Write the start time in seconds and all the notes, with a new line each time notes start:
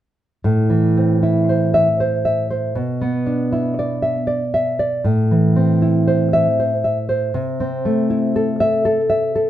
0.44 A2
0.70 E3
0.97 C4
1.23 E4
1.49 C5
1.74 E5
2.00 C5
2.25 E5
2.51 C5
2.75 B2
3.02 B3
3.26 D4
3.52 E4
3.79 D5
4.02 E5
4.27 D5
4.54 E5
4.79 D5
5.04 A2
5.31 E3
5.56 C4
5.82 E4
6.08 C5
6.33 E5
6.60 C5
6.84 E5
7.09 C5
7.34 C3
7.60 C4
7.85 A3
8.10 E4
8.36 A4
8.60 E5
8.85 A4
9.10 E5
9.36 A4